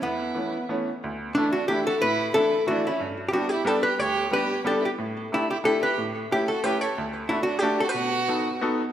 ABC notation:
X:1
M:3/4
L:1/16
Q:1/4=182
K:A
V:1 name="Hollow-body jazz guitar"
B,8 z4 | [K:D] z4 D2 F2 G2 A2 | B4 A4 F2 E2 | z3 z/2 G/2 F2 G2 A2 B2 |
c4 B4 A2 G2 | z4 E2 G2 A2 B2 | z4 G2 A2 B2 c2 | z4 E2 F2 G3 A |
B8 z4 |]
V:2 name="Violin"
E8 z4 | [K:D] z4 A,2 D2 E2 F2 | E4 E4 D2 C2 | z3 z/2 E/2 D2 E2 D2 G2 |
G4 G4 D2 E2 | z4 A,2 E2 E2 G2 | z4 E2 F2 G2 A2 | z4 A,2 D2 D3 F |
F8 z4 |]
V:3 name="Upright piano"
E,,4 [E,A,B,C]2 z2 [E,A,B,C]2 z2 | [K:D] D,,4 [E,A,DE]2 z2 [E,A,DE]2 z2 | A,,4 [E,A,DE]2 z2 [E,A,DE]2 z2 | G,,4 [G,B,DG]2 z2 [G,B,DG]2 z2 |
D,,4 [G,B,DG]2 z2 [G,B,DG]2 z2 | A,,4 [A,DEG]2 z2 [A,DEG]2 z2 | A,,4 [A,CEG]2 z2 [A,CEG]2 z2 | D,,4 [A,DFA]2 z2 [A,DFA]2 z2 |
B,,4 [B,^DFA]2 z2 [B,DFA]2 z2 |]